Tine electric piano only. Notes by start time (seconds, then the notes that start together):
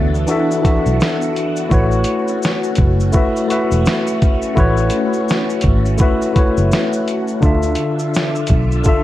Already playing: E3 D4 F#4 A4 E5
0.27 E3 D4 F#4 A4
0.31 E5
0.62 E3 D4 F#4 A4
0.67 E5
1.69 A3 E4 F#4 B4
1.74 C#5
3.12 A3 E4 F#4 B4
3.17 E5
3.47 A3 E4 F#4 B4
3.52 E5
4.55 A3 E4 F#4 B4
4.60 C#5
5.98 A3 E4 F#4 B4
6.03 E5
6.33 A3 E4 F#4 B4
6.38 C#5
7.41 D3 D4 F4 A4
7.46 E5
8.84 D3 D4 F4 A4
8.88 E5